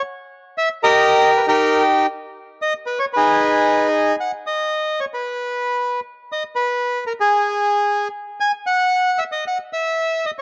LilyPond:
\new Staff \with { instrumentName = "Bandoneon" } { \time 4/4 \key gis \minor \tempo 4 = 115 << { r4 e''8 dis''4 b'16 ais'8. r8 | r4 dis''8 b'16 cis''16 b'4. r8 | \key b \major fis''8 dis''4 cis''16 b'4.~ b'16 r8 | dis''8 b'4 ais'16 gis'4.~ gis'16 r8 |
gis''8 fis''4 e''16 dis''16 fis''8 e''4 dis''16 r16 | } \\ { r4. <g' bes'>4~ <g' bes'>16 <dis' g'>4~ <dis' g'>16 | r2 <dis' gis'>2 | r1 | r1 |
r1 | } >> }